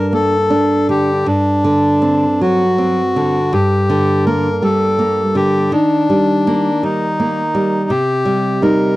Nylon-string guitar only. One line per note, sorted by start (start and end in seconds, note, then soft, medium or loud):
0.00 1.22 G2 medium
0.00 0.36 D4 medium
0.13 0.73 A#3 soft
0.50 1.11 D4 medium
0.89 1.26 D3 medium
1.26 3.49 G2 medium
1.64 2.25 D3 soft
2.02 2.63 C4 medium
2.41 3.01 F#3 medium
2.78 3.38 C4 medium
3.16 3.53 D3 soft
3.53 5.67 G2 medium
3.90 4.48 D3 medium
4.27 4.85 A#3 medium
4.62 5.21 G3 soft
4.99 5.56 A#3 soft
5.35 5.71 D3 soft
5.72 7.87 D#3 medium
6.10 6.69 G3 medium
6.47 7.05 A#3 medium
6.83 7.41 G3 soft
7.20 7.77 A#3 medium
7.55 7.90 G3 soft
7.90 8.95 C3 medium
8.25 8.61 G3 medium
8.62 8.95 G3 soft
8.62 8.95 D#4 medium